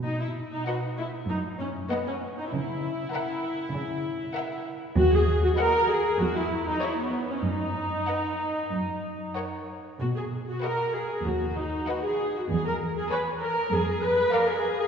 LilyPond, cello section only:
\new Staff \with { instrumentName = "Cello section" } { \clef bass \time 4/4 \key b \major \tempo 4 = 97 b,4 r4 fis,4 r4 | cis4 r4 cis4 r4 | dis,4 r4 e,4 r4 | fis,4 r4 fis,4 r4 |
b,4 r4 dis,4 r4 | e,4 r4 f,4 r4 | }